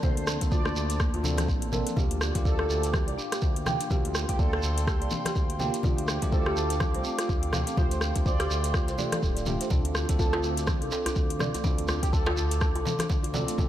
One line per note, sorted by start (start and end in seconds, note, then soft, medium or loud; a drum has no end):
0.00 0.38 D2 loud
0.00 1.93 A#3 medium
0.00 0.16 A#3 medium
0.00 0.38 A#3 medium
0.00 0.38 C4 medium
0.00 0.38 D4 medium
0.00 0.38 A4 medium
0.00 0.12 C5 medium
0.00 1.93 D5 medium
0.00 1.93 A5 medium
0.00 1.93 C6 medium
0.00 kick loud
0.00 high conga medium
0.00 low conga loud
0.00 shekere soft
0.17 0.24 C5 medium
0.17 closed hi-hat soft
0.27 cross-stick loud
0.27 shekere loud
0.41 0.73 D2 loud
0.41 0.55 A#3 medium
0.41 0.55 C4 medium
0.41 0.55 D4 medium
0.41 0.55 A4 medium
0.41 kick medium
0.41 closed hi-hat medium
0.41 shekere soft
0.51 0.64 F4 medium
0.51 1.00 D5 medium
0.51 kick loud
0.51 shekere medium
0.65 0.75 D4 loud
0.65 cross-stick medium
0.65 shekere soft
0.76 1.10 D2 medium
0.76 shekere medium
0.90 closed hi-hat medium
0.90 shekere soft
0.99 1.12 A#3 medium
0.99 kick loud
0.99 cross-stick medium
0.99 shekere medium
1.14 1.50 D2 loud
1.14 1.19 F4 medium
1.14 closed hi-hat soft
1.24 1.70 A#3 medium
1.24 1.70 C4 medium
1.24 1.37 D4 medium
1.24 1.70 D4 medium
1.24 1.70 A4 loud
1.24 high conga medium
1.24 low conga medium
1.24 shekere loud
1.38 1.44 A#3 medium
1.38 cross-stick medium
1.38 closed hi-hat medium
1.38 high conga loud
1.38 shekere soft
1.48 1.83 A1 medium
1.48 kick loud
1.48 shekere medium
1.62 closed hi-hat soft
1.72 1.95 A#3 medium
1.72 1.95 C4 medium
1.72 1.95 D4 medium
1.72 1.95 A4 medium
1.72 1.80 A#4 loud
1.72 high conga medium
1.72 low conga medium
1.72 shekere medium
1.86 1.92 F3 medium
1.86 closed hi-hat medium
1.86 shekere soft
1.96 2.31 D2 loud
1.96 5.80 A#3 medium
1.96 2.32 A#3 medium
1.96 2.32 D4 medium
1.96 2.32 F4 medium
1.96 2.09 G4 medium
1.96 2.32 G4 medium
1.96 13.54 F5 medium
1.96 9.67 G5 medium
1.96 3.89 D6 medium
1.96 kick loud
1.96 high conga medium
1.96 low conga loud
1.96 shekere soft
2.11 closed hi-hat soft
2.21 cross-stick medium
2.21 shekere medium
2.35 2.67 D2 loud
2.35 3.88 A#3 medium
2.35 3.88 D4 medium
2.35 3.88 F4 medium
2.35 3.88 G4 loud
2.35 kick medium
2.35 closed hi-hat medium
2.35 high conga medium
2.35 shekere soft
2.45 2.83 A4 medium
2.45 2.58 D5 medium
2.45 kick loud
2.45 shekere soft
2.59 2.68 A4 loud
2.59 cross-stick medium
2.70 3.09 D2 medium
2.70 shekere medium
2.83 closed hi-hat medium
2.83 shekere soft
2.93 3.06 G4 medium
2.93 kick loud
2.93 cross-stick medium
2.93 high conga medium
2.93 shekere medium
3.07 3.16 C2 medium
3.07 3.13 D5 medium
3.07 closed hi-hat soft
3.18 3.25 D4 medium
3.18 shekere medium
3.32 3.38 G4 medium
3.32 cross-stick medium
3.32 closed hi-hat medium
3.32 shekere soft
3.42 3.76 D2 medium
3.42 kick loud
3.42 shekere medium
3.56 closed hi-hat soft
3.66 3.74 G5 loud
3.66 cross-stick medium
3.66 high conga medium
3.66 low conga loud
3.66 shekere medium
3.80 3.86 D4 medium
3.80 closed hi-hat medium
3.80 shekere soft
3.90 4.25 D2 loud
3.90 4.26 A#3 medium
3.90 4.25 D4 medium
3.90 4.26 F4 medium
3.90 4.03 G4 medium
3.90 4.26 G4 medium
3.90 5.82 C6 medium
3.90 kick loud
3.90 high conga medium
3.90 low conga medium
3.90 shekere medium
4.05 closed hi-hat soft
4.15 cross-stick medium
4.15 shekere medium
4.28 4.60 D2 loud
4.28 4.42 A#3 medium
4.28 4.42 D4 medium
4.28 4.42 F4 medium
4.28 4.37 G4 loud
4.28 4.42 G4 medium
4.28 kick medium
4.28 closed hi-hat medium
4.28 shekere soft
4.38 5.07 A4 loud
4.38 4.52 D5 medium
4.38 kick loud
4.38 shekere soft
4.53 4.62 A4 loud
4.53 cross-stick medium
4.62 5.03 D2 medium
4.62 shekere medium
4.78 closed hi-hat medium
4.78 shekere soft
4.87 5.00 G4 medium
4.87 kick loud
4.87 cross-stick medium
4.87 shekere soft
5.01 5.10 C2 loud
5.01 5.07 D5 medium
5.01 closed hi-hat soft
5.11 5.19 D4 medium
5.11 high conga medium
5.11 low conga medium
5.11 shekere medium
5.25 5.31 G4 medium
5.25 cross-stick medium
5.25 closed hi-hat medium
5.25 high conga medium
5.25 shekere soft
5.35 5.70 D2 medium
5.35 kick loud
5.35 shekere medium
5.50 closed hi-hat soft
5.59 5.82 A#3 loud
5.59 5.82 D4 medium
5.59 5.82 F4 medium
5.59 5.82 G4 loud
5.59 5.68 G5 loud
5.59 high conga medium
5.59 low conga medium
5.59 shekere medium
5.74 5.79 D4 medium
5.74 closed hi-hat medium
5.74 shekere soft
5.83 6.18 D2 loud
5.83 6.19 A3 medium
5.83 6.19 D4 medium
5.83 6.19 F4 medium
5.83 5.97 F4 medium
5.83 6.19 G4 medium
5.83 13.54 A4 medium
5.83 7.75 D6 medium
5.83 kick loud
5.83 high conga medium
5.83 low conga loud
5.83 shekere soft
5.98 closed hi-hat soft
6.08 cross-stick medium
6.08 shekere medium
6.22 6.54 D2 medium
6.22 7.75 A3 loud
6.22 7.75 D4 medium
6.22 7.75 F4 medium
6.22 7.75 G4 loud
6.22 kick medium
6.22 closed hi-hat medium
6.22 high conga medium
6.22 shekere soft
6.32 6.71 A4 loud
6.32 6.45 C5 medium
6.32 kick loud
6.32 shekere soft
6.46 6.56 G4 loud
6.46 cross-stick medium
6.57 6.96 D2 medium
6.57 shekere medium
6.70 closed hi-hat medium
6.70 shekere soft
6.80 6.94 F4 medium
6.80 kick loud
6.80 cross-stick medium
6.80 high conga medium
6.80 shekere soft
6.94 7.03 C2 loud
6.94 7.00 C5 medium
6.94 closed hi-hat soft
7.04 7.13 C4 medium
7.04 shekere medium
7.19 7.25 F4 medium
7.19 cross-stick medium
7.19 closed hi-hat medium
7.19 shekere soft
7.29 7.63 D2 medium
7.29 kick loud
7.29 shekere medium
7.43 closed hi-hat soft
7.53 7.61 F5 loud
7.53 cross-stick medium
7.53 high conga medium
7.53 low conga medium
7.53 shekere medium
7.67 7.73 C4 medium
7.67 closed hi-hat medium
7.67 shekere soft
7.77 8.12 D2 loud
7.77 8.13 A3 medium
7.77 8.12 D4 medium
7.77 8.12 F4 medium
7.77 7.90 F4 medium
7.77 8.12 G4 medium
7.77 7.87 C5 medium
7.77 9.69 C6 medium
7.77 kick loud
7.77 high conga medium
7.77 low conga loud
7.77 shekere medium
7.91 7.98 C5 medium
7.91 closed hi-hat soft
7.91 shekere soft
8.01 cross-stick medium
8.01 shekere medium
8.15 8.47 D2 loud
8.15 8.29 A3 medium
8.15 8.29 D4 medium
8.15 8.29 F4 medium
8.15 8.29 G4 medium
8.15 kick medium
8.15 closed hi-hat medium
8.15 high conga medium
8.15 shekere soft
8.26 8.39 C5 medium
8.26 8.74 D5 loud
8.26 kick loud
8.26 shekere soft
8.40 8.49 G4 loud
8.40 cross-stick medium
8.40 closed hi-hat soft
8.40 shekere soft
8.50 8.90 D2 medium
8.50 shekere medium
8.64 closed hi-hat medium
8.64 shekere soft
8.74 8.87 F4 medium
8.74 kick loud
8.74 cross-stick medium
8.74 shekere medium
8.88 8.97 C2 loud
8.88 8.94 C5 medium
8.88 closed hi-hat soft
8.88 shekere soft
8.98 9.45 A3 medium
8.98 9.45 D4 medium
8.98 9.45 F4 medium
8.98 9.45 G4 loud
8.98 9.11 D5 loud
8.98 high conga medium
8.98 low conga medium
8.98 shekere medium
9.12 9.18 A4 loud
9.12 cross-stick medium
9.12 closed hi-hat medium
9.12 high conga loud
9.12 shekere soft
9.23 9.57 D1 medium
9.23 9.30 G4 medium
9.23 kick loud
9.23 shekere soft
9.37 9.42 D5 medium
9.37 closed hi-hat soft
9.37 shekere soft
9.46 9.69 A3 medium
9.46 9.69 D4 medium
9.46 9.69 F4 medium
9.46 9.55 G4 medium
9.46 9.69 G4 medium
9.46 high conga medium
9.46 low conga loud
9.46 shekere medium
9.61 9.70 C5 medium
9.61 closed hi-hat medium
9.61 shekere soft
9.70 10.05 D2 loud
9.70 10.06 C4 medium
9.70 10.06 D4 medium
9.70 9.84 D4 medium
9.70 10.06 F4 medium
9.70 10.06 A4 medium
9.70 13.69 C6 medium
9.70 13.69 D6 medium
9.70 kick loud
9.70 high conga medium
9.70 low conga loud
9.70 shekere medium
9.85 closed hi-hat soft
9.85 djembe tone medium
9.95 cross-stick medium
9.95 shekere medium
10.09 10.41 D2 medium
10.09 11.62 C4 loud
10.09 11.62 D4 medium
10.09 11.62 F4 medium
10.09 11.62 A4 loud
10.09 kick medium
10.09 closed hi-hat medium
10.09 high conga medium
10.09 shekere soft
10.19 10.58 A4 loud
10.19 10.32 A4 medium
10.19 kick loud
10.19 djembe tone loud
10.19 shekere medium
10.33 10.43 F4 loud
10.33 cross-stick medium
10.33 djembe slap loud
10.43 10.83 D2 medium
10.43 shekere medium
10.57 closed hi-hat medium
10.57 shekere soft
10.67 10.81 D4 medium
10.67 kick loud
10.67 cross-stick medium
10.67 djembe tone medium
10.67 high conga loud
10.67 shekere medium
10.82 10.90 C2 medium
10.82 10.87 A4 medium
10.82 closed hi-hat soft
10.91 11.05 A4 medium
10.91 djembe slap medium
10.91 shekere medium
11.06 11.12 D4 medium
11.06 cross-stick medium
11.06 closed hi-hat medium
11.06 djembe tone loud
11.06 shekere soft
11.16 11.51 D2 medium
11.16 kick loud
11.16 shekere medium
11.30 closed hi-hat soft
11.39 11.48 D5 loud
11.39 cross-stick medium
11.39 high conga loud
11.39 low conga loud
11.39 shekere medium
11.54 11.60 A3 medium
11.54 closed hi-hat medium
11.54 djembe tone medium
11.54 shekere soft
11.64 11.99 D2 loud
11.64 12.00 C4 medium
11.64 11.77 D4 medium
11.64 12.00 D4 medium
11.64 12.00 F4 medium
11.64 12.00 A4 medium
11.64 kick loud
11.64 high conga loud
11.64 low conga loud
11.64 shekere medium
11.78 closed hi-hat soft
11.88 cross-stick loud
11.88 djembe tone loud
11.88 shekere medium
12.02 12.34 D2 loud
12.02 12.16 C4 medium
12.02 12.16 D4 medium
12.02 12.16 F4 medium
12.02 12.11 G4 medium
12.02 12.16 A4 medium
12.02 kick medium
12.02 closed hi-hat medium
12.02 shekere soft
12.12 12.81 A4 loud
12.12 12.26 A4 medium
12.12 kick loud
12.12 shekere medium
12.26 12.36 F4 loud
12.26 cross-stick medium
12.26 djembe slap loud
12.37 12.77 D2 medium
12.37 djembe tone medium
12.37 shekere loud
12.51 closed hi-hat medium
12.51 shekere soft
12.61 12.74 D4 medium
12.61 kick loud
12.61 cross-stick medium
12.61 shekere medium
12.75 12.84 C2 medium
12.75 12.81 A4 medium
12.75 closed hi-hat soft
12.75 djembe tone loud
12.85 12.98 A4 medium
12.85 djembe slap medium
12.85 high conga loud
12.85 low conga medium
12.85 shekere loud
12.99 13.05 D4 medium
12.99 cross-stick medium
12.99 closed hi-hat medium
12.99 high conga loud
12.99 shekere soft
13.10 13.44 D2 medium
13.10 kick loud
13.10 djembe slap medium
13.10 shekere medium
13.23 closed hi-hat soft
13.23 djembe tone medium
13.34 13.56 C4 medium
13.34 13.56 D4 medium
13.34 13.56 F4 medium
13.34 13.56 A4 loud
13.34 13.42 D5 loud
13.34 djembe slap medium
13.34 high conga medium
13.34 low conga loud
13.34 shekere medium
13.48 13.54 A3 medium
13.48 closed hi-hat medium
13.48 shekere soft
13.58 13.69 D2 loud
13.58 13.69 A#3 medium
13.58 13.69 C4 medium
13.58 13.69 D4 medium
13.58 13.69 A4 medium
13.58 13.69 A5 medium
13.58 kick loud
13.58 djembe tone loud
13.58 high conga medium
13.58 low conga loud
13.58 shekere medium